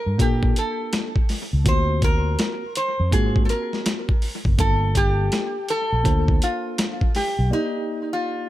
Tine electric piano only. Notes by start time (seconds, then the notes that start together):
0.18 A#3 D4 F4 A4
1.65 A#3 C4 F4 F#4
3.12 A#3 C4 F4 F#4
4.58 A#3 D4 F4 A4
6.04 A#3 D4 F4 C5
7.50 A#3 D#4 G4 D5